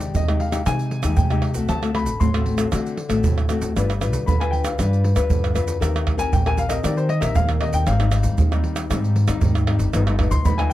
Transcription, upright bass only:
0, 0, Header, 1, 2, 480
1, 0, Start_track
1, 0, Tempo, 515464
1, 1575, Time_signature, 4, 2, 24, 8
1, 9992, End_track
2, 0, Start_track
2, 0, Title_t, "Upright bass"
2, 0, Program_c, 0, 32
2, 2, Note_on_c, 0, 39, 90
2, 109, Note_off_c, 0, 39, 0
2, 139, Note_on_c, 0, 39, 86
2, 545, Note_off_c, 0, 39, 0
2, 618, Note_on_c, 0, 48, 103
2, 922, Note_off_c, 0, 48, 0
2, 966, Note_on_c, 0, 39, 99
2, 1100, Note_on_c, 0, 48, 93
2, 1114, Note_off_c, 0, 39, 0
2, 1404, Note_off_c, 0, 48, 0
2, 1446, Note_on_c, 0, 36, 81
2, 1551, Note_off_c, 0, 36, 0
2, 1575, Note_on_c, 0, 38, 90
2, 1924, Note_off_c, 0, 38, 0
2, 1924, Note_on_c, 0, 33, 89
2, 2031, Note_off_c, 0, 33, 0
2, 2059, Note_on_c, 0, 33, 83
2, 2466, Note_off_c, 0, 33, 0
2, 2539, Note_on_c, 0, 50, 108
2, 2844, Note_off_c, 0, 50, 0
2, 2886, Note_on_c, 0, 33, 96
2, 3019, Note_on_c, 0, 50, 95
2, 3033, Note_off_c, 0, 33, 0
2, 3324, Note_off_c, 0, 50, 0
2, 3368, Note_on_c, 0, 38, 81
2, 3473, Note_off_c, 0, 38, 0
2, 3501, Note_on_c, 0, 31, 89
2, 3847, Note_off_c, 0, 31, 0
2, 3847, Note_on_c, 0, 38, 83
2, 3953, Note_off_c, 0, 38, 0
2, 3980, Note_on_c, 0, 38, 91
2, 4387, Note_off_c, 0, 38, 0
2, 4458, Note_on_c, 0, 43, 103
2, 4763, Note_off_c, 0, 43, 0
2, 4805, Note_on_c, 0, 38, 91
2, 4931, Note_off_c, 0, 38, 0
2, 4938, Note_on_c, 0, 43, 78
2, 5154, Note_off_c, 0, 43, 0
2, 5174, Note_on_c, 0, 41, 87
2, 5391, Note_off_c, 0, 41, 0
2, 5414, Note_on_c, 0, 39, 83
2, 5762, Note_off_c, 0, 39, 0
2, 5762, Note_on_c, 0, 34, 82
2, 5870, Note_off_c, 0, 34, 0
2, 5896, Note_on_c, 0, 34, 87
2, 6304, Note_off_c, 0, 34, 0
2, 6370, Note_on_c, 0, 51, 105
2, 6678, Note_off_c, 0, 51, 0
2, 6722, Note_on_c, 0, 34, 98
2, 6855, Note_on_c, 0, 51, 87
2, 6869, Note_off_c, 0, 34, 0
2, 7161, Note_off_c, 0, 51, 0
2, 7199, Note_on_c, 0, 39, 90
2, 7308, Note_off_c, 0, 39, 0
2, 7332, Note_on_c, 0, 32, 96
2, 7676, Note_on_c, 0, 39, 94
2, 7689, Note_off_c, 0, 32, 0
2, 7786, Note_off_c, 0, 39, 0
2, 7811, Note_on_c, 0, 39, 89
2, 8220, Note_off_c, 0, 39, 0
2, 8291, Note_on_c, 0, 44, 108
2, 8597, Note_off_c, 0, 44, 0
2, 8642, Note_on_c, 0, 39, 92
2, 8773, Note_on_c, 0, 44, 100
2, 8787, Note_off_c, 0, 39, 0
2, 9078, Note_off_c, 0, 44, 0
2, 9113, Note_on_c, 0, 30, 93
2, 9223, Note_off_c, 0, 30, 0
2, 9248, Note_on_c, 0, 31, 88
2, 9602, Note_on_c, 0, 38, 93
2, 9616, Note_off_c, 0, 31, 0
2, 9707, Note_off_c, 0, 38, 0
2, 9735, Note_on_c, 0, 38, 84
2, 9992, Note_off_c, 0, 38, 0
2, 9992, End_track
0, 0, End_of_file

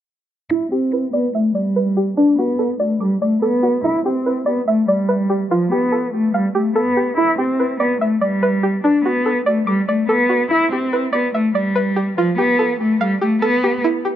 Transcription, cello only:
0, 0, Header, 1, 2, 480
1, 0, Start_track
1, 0, Key_signature, 1, "minor"
1, 0, Tempo, 416667
1, 586, Time_signature, 4, 2, 24, 8
1, 16310, End_track
2, 0, Start_track
2, 0, Title_t, "Cello"
2, 0, Program_c, 0, 42
2, 584, Note_on_c, 0, 64, 96
2, 797, Note_off_c, 0, 64, 0
2, 827, Note_on_c, 0, 60, 74
2, 1278, Note_off_c, 0, 60, 0
2, 1307, Note_on_c, 0, 59, 77
2, 1519, Note_off_c, 0, 59, 0
2, 1551, Note_on_c, 0, 57, 75
2, 1762, Note_off_c, 0, 57, 0
2, 1784, Note_on_c, 0, 55, 77
2, 2462, Note_off_c, 0, 55, 0
2, 2502, Note_on_c, 0, 62, 83
2, 2717, Note_off_c, 0, 62, 0
2, 2745, Note_on_c, 0, 59, 74
2, 3197, Note_off_c, 0, 59, 0
2, 3229, Note_on_c, 0, 57, 75
2, 3440, Note_off_c, 0, 57, 0
2, 3466, Note_on_c, 0, 55, 86
2, 3679, Note_off_c, 0, 55, 0
2, 3706, Note_on_c, 0, 57, 71
2, 3919, Note_off_c, 0, 57, 0
2, 3943, Note_on_c, 0, 59, 90
2, 4396, Note_off_c, 0, 59, 0
2, 4430, Note_on_c, 0, 64, 96
2, 4641, Note_off_c, 0, 64, 0
2, 4668, Note_on_c, 0, 60, 75
2, 5118, Note_off_c, 0, 60, 0
2, 5149, Note_on_c, 0, 59, 78
2, 5360, Note_off_c, 0, 59, 0
2, 5391, Note_on_c, 0, 57, 85
2, 5601, Note_off_c, 0, 57, 0
2, 5625, Note_on_c, 0, 55, 82
2, 6302, Note_off_c, 0, 55, 0
2, 6347, Note_on_c, 0, 53, 81
2, 6559, Note_off_c, 0, 53, 0
2, 6587, Note_on_c, 0, 59, 81
2, 7038, Note_off_c, 0, 59, 0
2, 7070, Note_on_c, 0, 57, 84
2, 7281, Note_off_c, 0, 57, 0
2, 7308, Note_on_c, 0, 55, 89
2, 7520, Note_off_c, 0, 55, 0
2, 7545, Note_on_c, 0, 57, 71
2, 7758, Note_off_c, 0, 57, 0
2, 7783, Note_on_c, 0, 59, 90
2, 8236, Note_off_c, 0, 59, 0
2, 8264, Note_on_c, 0, 64, 96
2, 8477, Note_off_c, 0, 64, 0
2, 8506, Note_on_c, 0, 60, 77
2, 8957, Note_off_c, 0, 60, 0
2, 8988, Note_on_c, 0, 59, 78
2, 9200, Note_off_c, 0, 59, 0
2, 9230, Note_on_c, 0, 57, 76
2, 9441, Note_off_c, 0, 57, 0
2, 9464, Note_on_c, 0, 55, 80
2, 10142, Note_off_c, 0, 55, 0
2, 10182, Note_on_c, 0, 62, 82
2, 10396, Note_off_c, 0, 62, 0
2, 10425, Note_on_c, 0, 59, 80
2, 10877, Note_off_c, 0, 59, 0
2, 10908, Note_on_c, 0, 57, 74
2, 11120, Note_off_c, 0, 57, 0
2, 11145, Note_on_c, 0, 55, 88
2, 11358, Note_off_c, 0, 55, 0
2, 11385, Note_on_c, 0, 57, 71
2, 11598, Note_off_c, 0, 57, 0
2, 11622, Note_on_c, 0, 59, 85
2, 12075, Note_off_c, 0, 59, 0
2, 12109, Note_on_c, 0, 64, 102
2, 12321, Note_off_c, 0, 64, 0
2, 12347, Note_on_c, 0, 60, 77
2, 12798, Note_off_c, 0, 60, 0
2, 12828, Note_on_c, 0, 59, 76
2, 13040, Note_off_c, 0, 59, 0
2, 13071, Note_on_c, 0, 57, 82
2, 13281, Note_off_c, 0, 57, 0
2, 13304, Note_on_c, 0, 55, 80
2, 13982, Note_off_c, 0, 55, 0
2, 14027, Note_on_c, 0, 53, 83
2, 14239, Note_off_c, 0, 53, 0
2, 14266, Note_on_c, 0, 59, 82
2, 14717, Note_off_c, 0, 59, 0
2, 14749, Note_on_c, 0, 57, 82
2, 14960, Note_off_c, 0, 57, 0
2, 14987, Note_on_c, 0, 55, 88
2, 15199, Note_off_c, 0, 55, 0
2, 15225, Note_on_c, 0, 57, 71
2, 15438, Note_off_c, 0, 57, 0
2, 15463, Note_on_c, 0, 59, 92
2, 15916, Note_off_c, 0, 59, 0
2, 16310, End_track
0, 0, End_of_file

